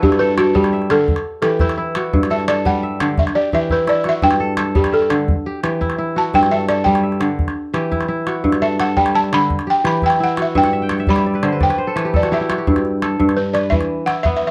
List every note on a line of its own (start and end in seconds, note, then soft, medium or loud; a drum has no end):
0.00 1.12 G2 medium
0.00 0.91 D4 medium
0.00 1.24 E4 medium
0.00 0.61 F#4 medium
0.00 0.21 G4 medium
0.00 0.20 A4 medium
0.00 1.09 B4 medium
0.00 0.24 D5 medium
0.00 calabash thump medium
0.12 calabash click soft
0.19 0.37 A4 medium
0.19 0.36 B4 loud
0.38 0.54 F#4 medium
0.38 1.69 A4 medium
0.38 calabash click medium
0.55 0.95 G3 medium
0.55 0.91 G4 medium
0.55 calabash thump medium
0.64 calabash click soft
0.73 1.76 E5 medium
0.82 calabash click soft
0.90 1.12 D3 medium
0.90 1.39 A4 medium
0.90 calabash click medium
1.08 calabash thump medium
1.16 calabash click soft
1.42 2.18 E3 medium
1.42 2.02 G4 medium
1.42 1.60 A4 medium
1.42 calabash click medium
1.60 1.77 E4 medium
1.60 1.77 B4 medium
1.60 calabash thump medium
1.69 calabash click medium
1.77 3.34 E4 medium
1.95 2.71 F#4 medium
1.95 calabash click medium
2.13 3.23 G2 medium
2.13 calabash thump medium
2.13 calabash click soft
2.23 calabash click medium
2.30 2.47 A4 medium
2.30 2.49 E5 medium
2.40 calabash click soft
2.48 3.80 A4 medium
2.48 2.56 D5 medium
2.48 calabash click medium
2.65 3.05 G3 medium
2.65 3.15 F#5 medium
2.65 calabash thump medium
2.83 3.87 E5 medium
3.00 3.23 D3 medium
3.00 calabash click medium
3.18 3.35 E5 medium
3.18 calabash thump medium
3.27 calabash click soft
3.35 3.53 G4 medium
3.35 3.53 D5 medium
3.53 4.28 E3 medium
3.53 4.11 G4 medium
3.53 3.62 E5 medium
3.53 calabash thump soft
3.70 3.87 E4 medium
3.70 3.89 B4 medium
3.70 calabash thump soft
3.87 5.44 E4 medium
3.87 4.07 D5 medium
3.87 calabash click soft
4.04 4.81 F#4 medium
4.04 calabash click soft
4.09 4.25 E5 medium
4.22 5.34 G2 medium
4.22 4.72 G5 loud
4.22 calabash thump medium
4.31 calabash click medium
4.40 4.57 A4 medium
4.57 5.89 A4 medium
4.57 calabash click medium
4.75 5.16 G3 medium
4.75 4.94 G4 medium
4.75 calabash thump medium
4.84 calabash click medium
4.92 5.26 A4 medium
4.92 5.95 E5 medium
5.02 calabash click soft
5.10 5.34 D3 medium
5.10 calabash click medium
5.28 calabash thump medium
5.46 5.63 G4 medium
5.63 6.39 E3 medium
5.63 6.22 G4 medium
5.63 calabash click medium
5.81 5.98 E4 medium
5.81 calabash thump medium
5.90 calabash click soft
5.98 7.55 E4 medium
6.16 6.92 F#4 medium
6.16 6.35 A5 medium
6.34 7.44 G2 medium
6.34 6.53 G5 loud
6.34 calabash thump medium
6.43 calabash click soft
6.51 6.68 A4 medium
6.51 6.70 E5 medium
6.69 8.00 A4 medium
6.69 6.85 D5 medium
6.69 calabash click medium
6.84 7.27 G3 medium
6.84 7.34 G5 medium
6.84 calabash thump medium
6.95 calabash click soft
7.03 8.06 E5 medium
7.12 calabash click soft
7.20 7.44 D3 medium
7.20 calabash click medium
7.39 calabash thump medium
7.48 calabash click soft
7.74 8.50 E3 medium
7.74 8.33 G4 medium
7.74 calabash click medium
7.92 8.08 E4 medium
7.92 calabash thump medium
8.01 calabash click soft
8.08 9.65 E4 medium
8.27 9.03 F#4 medium
8.27 calabash click medium
8.44 9.55 G2 medium
8.44 calabash thump medium
8.52 calabash click soft
8.62 8.80 A4 medium
8.62 8.79 E5 medium
8.80 10.12 A4 medium
8.80 8.96 F#5 medium
8.80 calabash click medium
8.97 9.38 G3 medium
8.97 9.05 G5 medium
8.97 calabash thump medium
9.06 calabash click medium
9.14 10.18 E5 medium
9.14 9.33 A5 loud
9.24 calabash click soft
9.32 9.55 D3 medium
9.32 9.66 B5 loud
9.32 calabash click medium
9.50 calabash thump medium
9.59 calabash click soft
9.67 9.84 G4 medium
9.67 9.87 G5 medium
9.84 10.61 E3 medium
9.84 10.44 G4 medium
9.84 9.94 B5 medium
9.84 calabash click medium
10.02 10.20 E4 medium
10.02 10.23 G5 medium
10.02 calabash thump medium
10.10 calabash click soft
10.20 11.77 E4 medium
10.20 10.40 F#5 medium
10.37 10.88 F#4 medium
10.37 calabash click medium
10.42 10.57 E5 medium
10.55 11.66 G2 medium
10.55 10.73 E5 medium
10.55 10.90 G5 loud
10.55 calabash thump medium
10.64 10.88 F#5 medium
10.64 calabash click soft
10.73 10.99 E5 medium
10.82 11.75 G5 medium
10.89 11.15 F#5 medium
10.89 calabash click medium
10.98 11.17 E5 medium
10.98 calabash click soft
11.07 11.49 G3 medium
11.07 11.26 D5 medium
11.07 11.64 B5 medium
11.07 calabash thump medium
11.16 12.21 E5 medium
11.16 calabash click soft
11.26 11.60 D5 medium
11.34 11.52 B4 medium
11.34 calabash click soft
11.43 11.66 D3 medium
11.43 11.76 C5 medium
11.43 calabash click medium
11.52 11.69 B4 medium
11.61 12.71 D5 medium
11.61 12.11 G5 medium
11.61 calabash thump medium
11.70 11.95 B4 medium
11.70 calabash click soft
11.78 12.02 C5 medium
11.87 12.13 A4 medium
11.96 12.72 E3 medium
11.96 13.19 B4 medium
11.96 calabash click medium
12.05 12.29 G4 medium
12.05 calabash click soft
12.14 13.02 A4 medium
12.14 12.33 D5 medium
12.14 calabash thump medium
12.14 calabash click soft
12.23 12.49 F#4 medium
12.23 calabash click soft
12.32 12.40 E4 medium
12.32 12.55 G4 medium
12.32 12.65 E5 medium
12.41 13.98 E4 medium
12.49 12.73 F#4 medium
12.49 calabash click medium
12.58 13.99 G4 medium
12.67 13.18 G2 medium
12.67 calabash thump medium
12.67 calabash click soft
12.76 calabash click soft
12.85 calabash click soft
13.02 14.34 A4 medium
13.02 calabash click medium
13.19 13.77 G2 medium
13.19 calabash thump medium
13.29 calabash click soft
13.37 13.53 B4 medium
13.54 14.51 B4 medium
13.54 13.72 D5 medium
13.54 calabash click medium
13.70 14.51 E3 medium
13.70 14.07 E5 medium
13.70 calabash thump medium
13.81 calabash click soft
14.06 14.51 E4 medium
14.06 14.14 F#5 medium
14.06 calabash click medium
14.23 14.51 B3 medium
14.23 14.35 E5 loud
14.23 calabash thump soft
14.37 14.46 E5 medium
14.42 calabash click soft
14.47 14.51 E5 medium